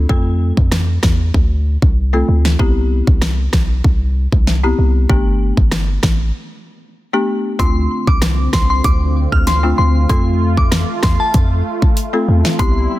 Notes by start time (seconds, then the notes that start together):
0.09 F2 A3 C4 F4 A4, kick
0.57 F2, kick
0.72 cross-stick, snare
1.03 E2, kick, cross-stick, snare
1.34 D2, kick
1.82 C2, kick
2.13 A3 C4 F4 A4
2.28 D2
2.45 snare
2.59 C2 B3 C4 E4 G4, kick
3.07 C2, kick
3.22 cross-stick, snare
3.53 B1, kick, cross-stick, snare
3.84 C2, kick
4.32 C2, kick
4.47 snare
4.64 B3 C4 E4 G4
4.79 C2
5.10 G1 A3 B3 D4 G4, kick
5.57 G1, kick
5.71 cross-stick, snare
6.03 A1, kick, cross-stick, snare
7.13 A3 B3 D4 G4
7.59 D2 D3 A3 C4 D4 F4 C6, kick, closed hi-hat
8.07 C2 D6, kick
8.22 cross-stick, snare, closed hi-hat
8.53 C2 C6, kick, cross-stick, snare
8.70 C6
8.84 D2 D6, kick, closed hi-hat
9.32 D2 F6, kick
9.47 C6, snare, closed hi-hat
9.63 A3 C4 D4 F4
9.78 D2 C6
10.09 F2 A3 C4 F4 A4 C6, kick, closed hi-hat
10.57 D6, kick
10.72 cross-stick, snare, closed hi-hat
11.03 E2 C6, kick, cross-stick, snare
11.20 A5
11.34 F2, kick, closed hi-hat
11.82 kick
11.97 closed hi-hat
12.13 A3 C4 F4 A4
12.28 E2
12.45 snare
12.59 C2 G3 B3 C4 E4 G4 C6, kick, closed hi-hat